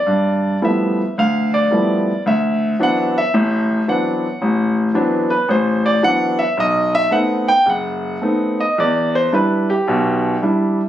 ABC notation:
X:1
M:4/4
L:1/8
Q:"Swing" 1/4=110
K:Dmix
V:1 name="Grand piano"
d2 e2 =f d3 | e2 f e3 f2- | f z2 B c d f e | ^d e f g f3 d |
d c B G3 z2 |]
V:2 name="Grand piano"
G,,2 [=F,G,A,B,E] z D,,2 [F,G,A,B,E] z | D,,2 [E,F,B,CD] z [A,,,A,,]2 [E,F,B,CD] z | A,,,2 [E,F,B,CD] z A,,,2 [E,F,B,CD] z | B,,,2 [A,B,C^D] z F,,,2 [A,B,CD] z |
E,,2 [G,DE] z [B,,,B,,]2 [G,DE] z |]